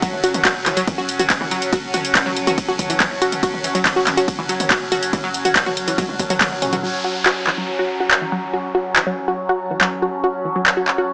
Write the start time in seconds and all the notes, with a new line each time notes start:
Already playing: F#3 C#4 F#4 C#5 F#5 A5
0.02 F#3, kick, closed hi-hat, ride
0.13 F#1, mid tom
0.24 F#1 F#4, open hi-hat
0.34 F#1, closed hi-hat, mid tom
0.45 F#4, kick, clap, closed hi-hat, ride
0.56 F#1
0.66 F#1 E3, clap, open hi-hat, mid tom
0.77 F#1 F#3, closed hi-hat
0.87 kick, closed hi-hat, mid tom, ride
0.98 F#1 F#4
1.09 F#1, open hi-hat
1.19 F#1 F#4, closed hi-hat, mid tom
1.30 kick, clap, closed hi-hat, ride
1.41 F#1 E3, mid tom
1.51 F#1 F#3, open hi-hat
1.62 F#1, closed hi-hat
1.73 F#4, kick, closed hi-hat, mid tom, ride
1.83 F#1
1.94 F#1 F#4, open hi-hat, mid tom
2.05 F#1, closed hi-hat
2.15 E3, kick, clap, closed hi-hat, ride
2.26 F#1 F#3, mid tom
2.36 F#1, open hi-hat
2.47 F#1 F#4, closed hi-hat, mid tom
2.58 kick, closed hi-hat, ride
2.69 F#1 F#4
2.79 F#1, kick, open hi-hat, mid tom
2.90 F#1 E3, closed hi-hat
3.00 F#3, kick, clap, closed hi-hat, mid tom, ride
3.11 F#1
3.22 F#1 F#4, open hi-hat
3.32 F#1, closed hi-hat, mid tom
3.43 F#4, kick, closed hi-hat, ride
3.54 F#1, mid tom
3.64 F#1 E3, open hi-hat
3.75 F#1 F#3, closed hi-hat
3.85 kick, clap, closed hi-hat, mid tom, ride
3.96 F#1 F#4
4.07 F#1, clap, open hi-hat, mid tom
4.17 F#1 F#4, closed hi-hat
4.28 kick, closed hi-hat, ride
4.39 F#1 E3, mid tom
4.49 F#1 F#3, open hi-hat
4.60 F#1, closed hi-hat, mid tom
4.71 F#4, kick, clap, closed hi-hat, ride
4.81 F#1
4.92 F#1 F#4, open hi-hat, mid tom
5.03 F#1, closed hi-hat
5.13 E3, kick, closed hi-hat, mid tom, ride
5.24 F#1 F#3
5.34 F#1, open hi-hat
5.45 F#1 F#4, closed hi-hat, mid tom
5.56 kick, clap, closed hi-hat, ride
5.66 F#1 F#4, mid tom
5.77 F#1, open hi-hat
5.88 F#1 E3, closed hi-hat
5.98 F#3, kick, closed hi-hat, mid tom, high tom, ride
6.09 F#1, high tom
6.19 F#1 F#3, kick, open hi-hat, mid tom
6.30 F#1 F#3, closed hi-hat, mid tom
6.41 F#3, kick, clap, closed hi-hat, mid tom, ride
6.51 F#1, mid tom
6.62 F#1 C#4, mid tom, open hi-hat
6.73 F#1 F#3, closed hi-hat, mid tom
6.83 F#3 C#4 F#4, downlifter
7.04 F#4
7.26 F#4, clap
7.38 C#5
7.47 E3 A5, clap
7.58 F#3
7.79 F#4 F#5
8.00 F#4
8.11 clap
8.22 E3
8.32 F#3
8.54 F#4
8.75 F#4
8.96 E3, clap
9.07 F#3
9.28 F#4
9.49 F#4
9.71 E3
9.81 F#3, clap
10.02 F#4
10.24 F#4
10.45 E3
10.56 F#3
10.66 clap
10.77 F#4
10.88 clap
10.98 F#4